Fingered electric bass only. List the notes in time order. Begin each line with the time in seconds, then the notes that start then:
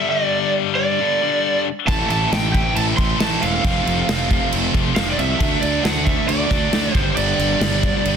1.88 A1
2.10 A1
2.32 A1
2.77 A1
2.98 A1
3.21 A1
3.43 E1
3.64 F1
3.86 F1
4.09 F1
4.53 F1
4.74 F1
4.97 F1
5.18 C2
5.40 D2
5.63 D2
5.85 D2
6.29 D2
6.51 D2
6.73 D2
6.95 G1
7.17 G1
7.39 G1
7.61 G1
8.06 G1